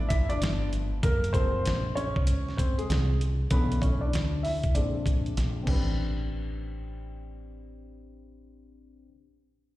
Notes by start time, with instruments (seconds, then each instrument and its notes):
Already playing: fretless electric bass A1, upright piano F3 A3 B3 D5
0.09 upright piano E4 E5, kick, closed hi-hat
0.29 upright piano D4 D5, closed hi-hat
0.41 fretless electric bass G1, snare, closed hi-hat
0.73 closed hi-hat
1.03 fretless electric bass F#1, upright piano A#3 A#4, kick, closed hi-hat
1.24 closed hi-hat
1.33 upright piano F3 G#3 A#3 C4 C5, kick, closed hi-hat
1.66 fretless electric bass A#1, snare, closed hi-hat
1.95 upright piano C#4 C#5, closed hi-hat
2.16 kick
2.27 fretless electric bass C#2, closed hi-hat
2.48 snare
2.57 upright piano C4 C5, kick, closed hi-hat
2.78 upright piano G#3 G#4, closed hi-hat
2.90 fretless electric bass C2, snare, closed hi-hat
3.21 closed hi-hat
3.50 fretless electric bass B1, upright piano D3 E3 A3 B3 C#4 B4, kick, closed hi-hat
3.72 closed hi-hat
3.82 upright piano C#4 C#5, kick, closed hi-hat
4.01 upright piano D4 D5
4.13 fretless electric bass D2, snare, closed hi-hat
4.43 upright piano E4 E5, open hi-hat
4.63 kick, closed hi-hat
4.75 fretless electric bass A#1, upright piano D3 G#3 C4 D4 D5, closed hi-hat
5.06 kick, closed hi-hat
5.26 closed hi-hat
5.37 fretless electric bass A#1, snare, closed hi-hat
5.63 upright piano C4 D4, crash
5.67 fretless electric bass A1, upright piano G4 B4, kick